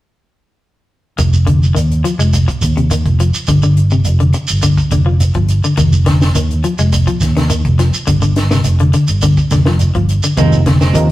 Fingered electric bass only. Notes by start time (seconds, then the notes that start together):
1.18 F1
1.75 D#2
2.19 F1
2.62 D#2
3.06 F1
3.35 muted fingered electric bass stroke
3.48 G1
4.06 F1
4.50 G1
4.92 F1
5.35 G1
5.64 muted fingered electric bass stroke
5.77 F1
6.35 D#2
6.79 F1
7.22 D#2
7.65 F1
7.94 muted fingered electric bass stroke
8.07 G1
8.66 F1
9.09 G1
9.51 F1
9.95 G1
10.24 muted fingered electric bass stroke
10.37 F1
10.94 D#2